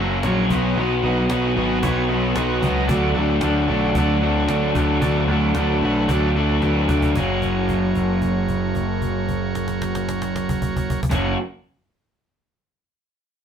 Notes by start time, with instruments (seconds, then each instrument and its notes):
Already playing: picked electric bass F#1, overdriven electric guitar F#2, transistor combo organ F#4 A#4 E5
0.00 overdriven electric guitar C#3 F#3 A#3 C#4 F#4
0.23 picked electric bass A#1, overdriven electric guitar F#2 C#3 F#3 A#3, transistor combo organ F#4 A#4 C#5, cajon slap
0.27 overdriven electric guitar C#4 F#4
0.50 picked electric bass B1, overdriven electric guitar B2 F#3 B3 D#4 F#4, transistor combo organ F#4 B4 D#5, cajon bass
0.76 picked electric bass B1, overdriven electric guitar B2 F#3 B3 D#4 F#4
1.03 picked electric bass B1, overdriven electric guitar B2 F#3 B3 D#4 F#4, transistor combo organ F#4 B4 D#5
1.29 picked electric bass B1, overdriven electric guitar B2 F#3 B3 D#4 F#4, transistor combo organ F#4 B4 D#5, cajon slap
1.56 picked electric bass G#1, overdriven electric guitar B2 F#3 B3 D#4 F#4, transistor combo organ F#4 B4 D#5
1.83 picked electric bass B1, overdriven electric guitar B2 F#3 B3 D#4 F#4, transistor combo organ F#4 B4 C#5, cajon bass
2.08 overdriven electric guitar B2 F#3 B3 D#4, transistor combo organ F#4 B4 D#5
2.12 overdriven electric guitar F#4
2.18 transistor combo organ E5
2.35 picked electric bass B1, overdriven electric guitar B2 F#3 B3 D#4 F#4, transistor combo organ F#4 B4 D#5 F#5, cajon slap
2.60 picked electric bass C#2, overdriven electric guitar B2 F#3 B3, transistor combo organ F#4 B4 D#5 A#5, cajon bass
2.65 overdriven electric guitar D#4 F#4
2.88 picked electric bass D2, overdriven electric guitar D3 F#3 A3 D4 F#4, transistor combo organ F#4 A4 D5, cajon bass
3.14 picked electric bass D2, overdriven electric guitar D3 F#3 A3 D4, transistor combo organ F#4 A4 D5
3.19 overdriven electric guitar F#4
3.41 picked electric bass D2, overdriven electric guitar D3 F#3 A3 D4 F#4, transistor combo organ F#4 A4 D5, cajon slap
3.68 picked electric bass B1, overdriven electric guitar D3 F#3 A3 D4 F#4, transistor combo organ F#4 A4 D5
3.93 picked electric bass D2, overdriven electric guitar D3 F#3 A3 D4, transistor combo organ F#4 A4 D5, cajon bass
3.98 overdriven electric guitar F#4
4.21 overdriven electric guitar D3 F#3 A3 D4 F#4, transistor combo organ F#4 A4 D5
4.47 picked electric bass D2, overdriven electric guitar D3 F#3 A3 D4 F#4, transistor combo organ F#4 A4 D5, cajon slap
4.74 picked electric bass D2, overdriven electric guitar D3 F#3 A3 D4 F#4, transistor combo organ F#4 A4 D5, cajon bass
5.01 picked electric bass D2, overdriven electric guitar D3 F#3 A3 D4 F#4, transistor combo organ F#4 A4 D5, cajon bass
5.28 picked electric bass D2, overdriven electric guitar D3 F#3 A3 D4 F#4, transistor combo organ F#4 A4 D5, cajon slap
5.55 picked electric bass D2, overdriven electric guitar D3 F#3 A3 D4 F#4, transistor combo organ F#4 A4 D5, cajon slap
5.82 picked electric bass B1, overdriven electric guitar D3 F#3 A3 D4 F#4, transistor combo organ F#4 A4 B4
6.08 picked electric bass D2, overdriven electric guitar D3 F#3 A3 D4, transistor combo organ F#4 A4 D5, cajon bass
6.12 overdriven electric guitar F#4
6.36 overdriven electric guitar D3 F#3 A3 D4 F#4, transistor combo organ F#4 A4 D5
6.61 picked electric bass D2, overdriven electric guitar D3 F#3 A3 D4 F#4, transistor combo organ F#4 A4 B4, cajon slap
6.88 picked electric bass D2, overdriven electric guitar D3 F#3 A3 D4 F#4, transistor combo organ F#4 A4 D5, cajon bass
7.02 cajon bass
7.14 picked electric bass F#1, overdriven electric guitar F#2 C#3 F#3 A#3 C#4, transistor combo organ F#4 A#4 C#5, cajon bass
7.19 overdriven electric guitar F#4
7.42 cajon bass
7.69 cajon bass
7.95 cajon bass
8.22 cajon bass
8.48 cajon bass
8.75 cajon bass
9.02 cajon bass
9.29 cajon bass
9.55 cajon slap
9.68 cajon slap
9.82 cajon slap
9.95 cajon slap
10.09 cajon slap
10.22 cajon slap
10.36 cajon slap
10.49 cajon bass
10.62 cajon bass
10.77 cajon bass
10.90 cajon bass
11.03 cajon bass
11.10 picked electric bass F#1, overdriven electric guitar F#2 C#3 F#3 A#3 C#4, transistor combo organ F#4 A#4 C#5, cajon bass, cajon slap
11.14 overdriven electric guitar F#4